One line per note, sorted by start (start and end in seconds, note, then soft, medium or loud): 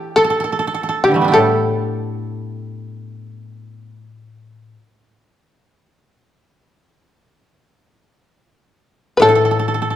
0.00 1.78 E3 soft
0.00 0.26 D4 medium
0.00 0.14 E4 medium
0.00 0.68 E4 medium
0.00 1.04 G4 medium
0.00 0.17 A4 soft
0.16 1.01 A4 medium
0.16 0.24 A4 medium
0.24 0.30 A4 soft
0.30 0.40 A4 soft
0.40 0.44 A4 soft
0.44 0.52 A4 soft
0.52 0.59 A4 soft
0.59 0.67 A4 soft
0.67 0.74 A4 soft
0.74 0.83 A4 soft
0.83 0.88 A4 soft
0.89 1.34 A4 soft
1.04 1.34 D3 soft
1.04 1.32 G4 medium
1.04 1.31 G4 medium
1.11 1.30 E3 soft
1.11 1.41 G3 soft
1.16 4.04 A3 soft
1.21 3.91 B3 soft
1.21 3.67 D4 soft
1.28 3.54 E4 soft
1.28 3.36 G4 soft
1.34 4.72 A2 soft
1.34 7.27 A4 medium
1.34 7.28 A4 medium
9.17 9.96 A2 soft
9.17 9.22 B4 medium
9.21 9.28 A4 medium
9.21 9.96 A4 medium
9.29 9.35 A4 soft
9.35 9.45 A4 soft
9.45 9.51 A4 soft
9.51 9.59 A4 soft
9.59 9.68 A4 soft
9.68 9.74 A4 soft
9.74 9.81 A4 soft
9.82 9.90 A4 soft
9.90 9.96 A4 soft